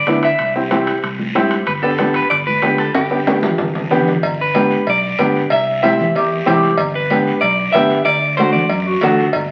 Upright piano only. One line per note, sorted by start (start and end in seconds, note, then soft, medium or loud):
0.08 0.24 B3 medium
0.08 0.24 D4 medium
0.08 0.24 E4 medium
0.56 0.61 C4 medium
0.56 0.61 E4 medium
0.56 0.61 G4 medium
0.71 0.93 C4 medium
0.71 0.94 E4 medium
0.71 0.94 G4 medium
1.35 1.52 C4 medium
1.35 1.52 E4 medium
1.35 1.52 G4 medium
1.83 1.89 B3 medium
1.83 1.89 D4 medium
1.83 1.89 G4 medium
1.98 2.21 B3 medium
1.98 2.21 D4 medium
1.98 2.22 G4 medium
2.63 2.80 B3 medium
2.63 2.80 D4 medium
2.63 2.80 G4 medium
3.11 3.17 B3 medium
3.11 3.17 D4 medium
3.11 3.17 G4 medium
3.27 3.50 B3 medium
3.27 3.50 D4 medium
3.27 3.50 G4 medium
3.91 4.08 B3 medium
3.91 4.08 D4 medium
3.91 4.08 G4 medium
4.55 4.77 B3 medium
4.55 4.77 D4 medium
4.55 4.78 G4 medium
5.19 5.41 B3 medium
5.19 5.42 D4 medium
5.19 5.42 G4 medium
5.83 6.05 C4 medium
5.83 6.05 E4 medium
5.83 6.06 G4 medium
6.46 6.69 C4 medium
6.46 6.69 E4 medium
6.46 6.69 G4 medium
7.10 7.33 B3 medium
7.10 7.33 D4 medium
7.10 7.34 G4 medium
7.74 7.97 B3 medium
7.74 7.97 D4 medium
7.74 7.97 G4 medium
8.39 8.61 A3 medium
8.39 8.61 D4 medium
8.39 8.62 F#4 medium
9.03 9.25 A3 medium
9.03 9.25 D4 medium
9.03 9.26 F#4 loud